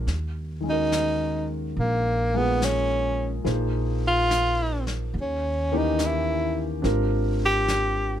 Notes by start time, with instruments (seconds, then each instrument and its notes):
0.07 upright bass D#2, brush sweep, snare
0.61 grand piano D#3 G#3
0.65 grand piano C#4 F#4
0.70 tenor saxophone D#4, grand piano A#4
0.92 snare, hi-hat pedal
1.76 upright bass A#1, tenor saxophone A#3, brush sweep
2.34 grand piano G#3 A#3 F4 G#4, tenor saxophone B3
2.62 tenor saxophone C#4, snare, hi-hat pedal
3.44 upright bass A#1, grand piano F3 A#3 D#4 G#4 C5, brush sweep, snare
4.07 tenor saxophone F4
4.31 snare, hi-hat pedal
4.87 snare
5.14 upright bass D#2, brush sweep
5.21 tenor saxophone C#4
5.72 grand piano D#3 E3 A#3 C#4 G4
5.77 tenor saxophone D#4
5.99 snare, hi-hat pedal
6.06 tenor saxophone E4
6.82 upright bass G#1, grand piano C4 D4 F4 G4 A#4, brush sweep, snare
7.46 tenor saxophone G4
7.68 snare, hi-hat pedal